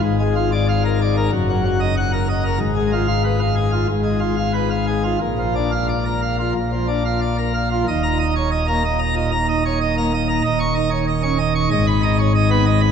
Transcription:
<<
  \new Staff \with { instrumentName = "Pipe organ" } { \time 4/4 \key ees \minor \tempo 4 = 93 << { r4 f''16 r4. r16 ges''16 r8. | r8. f''16 r2. | r8. f''16 r2. | ees''16 bes''16 ees''16 des''16 ees''16 bes''16 ees''16 bes''16 ees''16 bes''16 ees''16 des''16 ees''16 bes''16 ees''16 bes''16 |
ees''16 des'''16 ees''16 des''16 ees''16 des'''16 ees''16 des'''16 ees''16 ces'''16 ees''16 des''16 ees''16 ces'''16 ees''16 ces'''16 | } \\ { aes,16 aes16 f'16 d''16 r16 bes'16 d''16 bes'16 ges,16 ges16 ges'16 ees''16 r16 bes'16 ees''16 bes'16 | aes,16 aes16 f'16 r16 ces''16 f''16 aes'16 f'16 aes,16 aes16 f'16 f''16 ces''16 f''16 aes'16 f'16 | bes,16 f16 d'16 r16 d''16 bes'16 f''16 f'16 bes,16 f16 d'16 f''16 d''16 bes'16 f''16 f'16 | ees,8 ees'16 r8 bes16 r8 bes,16 r16 ees'16 r8 bes16 r8 |
ees,8 ees'16 r8 des'16 r8 aes,8 ees'16 r8 ces'16 r8 | } >> }
  \new Staff \with { instrumentName = "Pipe organ" } { \clef bass \time 4/4 \key ees \minor aes,,2 ges,,2 | aes,,2 aes,,2 | bes,,2 bes,,2 | ees,,1 |
ees,,2 aes,,2 | }
>>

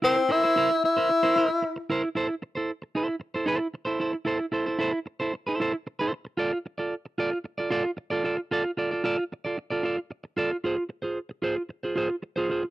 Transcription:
<<
  \new Staff \with { instrumentName = "Clean electric guitar" } { \time 4/4 \key f \major \tempo 4 = 113 <e' bes' c''>16 r16 <e' bes' c''>16 <e' bes' c''>16 <e' bes' c''>16 r8 <e' bes' c''>16 r16 <e' bes' c''>16 <e' bes' c''>16 r8. <e' bes' c''>16 r16 | <e' a' c''>16 r8 <e' a' c''>16 r8 <e' a' c''>8 r16 <e' a' c''>16 <e' a' c''>8 r16 <e' a' c''>16 <e' a' c''>16 r16 | <e' a' c''>16 r16 <e' a' c''>16 <e' a' c''>16 <e' a' c''>16 r8 <e' a' c''>16 r16 <e' a' c''>16 <e' a' c''>16 r8 <e' a' c''>8 r16 | <f' a' d''>16 r8 <f' a' d''>16 r8 <f' a' d''>16 r8 <f' a' d''>16 <f' a' d''>16 r8 <f' a' d''>16 <f' a' d''>16 r16 |
<f' a' d''>16 r16 <f' a' d''>16 <f' a' d''>16 <f' a' d''>16 r8 <f' a' d''>16 r16 <f' a' d''>16 <f' a' d''>16 r8. <f' a' d''>16 r16 | <f' aes' c''>16 r8 <f' aes' c''>16 r8 <f' aes' c''>16 r8 <f' aes' c''>16 <f' aes' c''>16 r8 <f' aes' c''>16 <f' aes' c''>16 r16 | }
  \new Staff \with { instrumentName = "Tenor saxophone" } { \time 4/4 \key f \major c'8 e'4 e'2 r8 | r1 | r1 | r1 |
r1 | r1 | }
>>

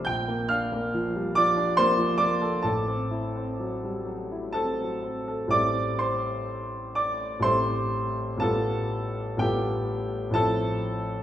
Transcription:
<<
  \new Staff \with { instrumentName = "Grand piano" } { \time 3/4 \key a \minor \tempo 4 = 63 <g'' g'''>8 <f'' f'''>4 <d'' d'''>8 <c'' c'''>8 <d'' d'''>8 | <a' a''>2 <a' a''>4 | <d'' d'''>8 <c'' c'''>4 <d'' d'''>8 <c'' c'''>4 | <a' a''>4 <g' g''>4 <a' a''>4 | }
  \new Staff \with { instrumentName = "Grand piano" } { \time 3/4 \key a \minor bes,,16 bes16 d'16 bes16 f16 g16 f16 d'16 bes16 f16 bes16 a'16 | a,,16 c'16 e'16 c'16 fis16 g16 fis16 e'16 c'16 fis16 c'16 a'16 | <a,, g c' e' a'>2 <a,, g c' e' a'>4 | <a,, g b f'>4 <a,, g b f' a'>4 <a,, f c' e'>4 | }
>>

